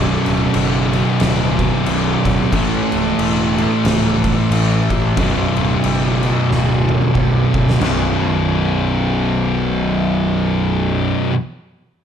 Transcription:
Already playing: B0 B1 F#2 B2
0.26 D1, crash
0.54 F#1, crash
0.92 B1 F#2 B2, crash
1.20 D1, snare, crash
1.59 kick, crash
1.86 B0 B1 F#2 B2, crash
2.25 D1, kick, crash
2.50 A1 A2 E3 A3, kick, crash
2.92 C#1, crash
3.18 E1, crash
3.58 A2 E3 A3, crash
3.84 C#1, snare, crash
4.24 kick, crash
4.50 A1 A2 E3 A3, crash
4.90 A1, kick, crash
5.16 B0 B1 F#2, kick, crash
5.20 B2
5.57 D1, crash
5.84 F#1, crash
6.22 B1 F#2 B2, crash
6.50 D1, snare
6.89 mid tom
7.02 mid tom
7.13 B0 B1 F#2 B2, kick
7.54 D1, kick
7.70 snare
7.79 B0 B1 F#2 B2, snare, floor tom, china

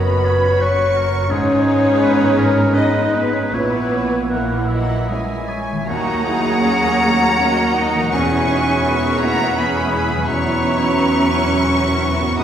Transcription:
Already playing: F#1 F#2 B3 C#4 F#4 B4 C#5 D#5 B5
0.25 C#5
0.59 C#4 F#4 B4 C#5 C#6
0.97 A#4
1.30 G#1 G#2 G#3 C#4 D#4 G#4 B4 C#5
1.66 B3
2.02 B3 B4
2.38 G#4 A#4
2.74 G#3 B3 D#4 B4 D#5
3.13 B3 B4
3.32 C#4 C#5
3.52 A#1 A#2 E3 B3 E4 B4 C#5
3.93 A#3
4.30 E3 A#3 E4 A#4 C#5 F#5
4.68 F#3 A#4 D#5 E5 F#5
5.08 G#3 C#4 C#5 D#5 E5 G#5
5.13 E4
5.49 A#4 C#5
5.72 D#3
5.76 A#3
5.80 C#4
5.85 F#3 A#3 C#4 D#4 F#4 A#4 C#5 F#5 A#5
5.89 D#2 F#4
6.08 F#4
6.25 E4 G#4
6.45 F#4
6.62 C#4 F#4
6.83 A#3
7.01 F#4
7.19 A#3
7.36 C#4 F#4 D#5
7.58 A#3
7.74 D#4 F#4
7.95 E3 A#4
7.99 G#3
8.04 B2
8.08 G#3 C#4 E4 G#4 B4 C#5 C#6
8.13 E2 G#4 G#5
8.32 E4
8.49 D#4 E5
8.69 E4
8.84 B2 B3 C#4 A#4
9.06 G#3
9.20 A#3 F#5 A#5
9.24 E4
9.43 G#3
9.56 B3 E4 G#4 G#5 B5
9.60 B3
9.78 G#3
9.92 E4 G#4
10.10 E3 G#4
10.14 F#3
10.18 B3
10.23 B3 E4 C#5 A#5 C#6
10.27 E2 F#3 C#4 F#4 E5
10.45 E4
10.62 B3 D#4
10.79 E4
10.97 B3 B4
11.16 F#3
11.34 C#4 E4
11.53 F#3
11.69 B3 C#4 F#4 A#4
11.86 F#3
12.04 B3 E4
12.21 G#2 F#4
12.25 B3
12.30 D#4
12.37 G#1 G#2 D#3 B3 D#4 G#4 B4 D#5 B5 D#6

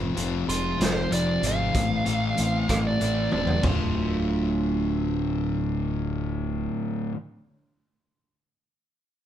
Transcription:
Already playing: F1 F2 C3 F3
0.15 F1 F2 C3 F3, closed hi-hat
0.46 F1 F2 C3 F3 G#3 F4, closed hi-hat
0.78 F1 F2 C3 F3, snare, closed hi-hat
0.83 C5
1.10 F1 F2 C3 F3 C4 D5, closed hi-hat
1.42 G#1 F2 C3 F3 G#3, closed hi-hat
1.47 F5
1.74 A1 A2 E3 A3, kick, closed hi-hat
2.05 A1 A2 E3 A3, closed hi-hat
2.36 A1 A2 E3 A3 C4, closed hi-hat
2.68 A1 A2 E3 A3, kick, cross-stick, closed hi-hat
2.87 D5
3.00 A1 A2 E3 A3 E4, closed hi-hat
3.32 E1 A2 E3 A3 C4 D5, high tom
3.47 floor tom
3.62 D1 D2 A2 A3, kick, floor tom, crash
3.66 D3 F4

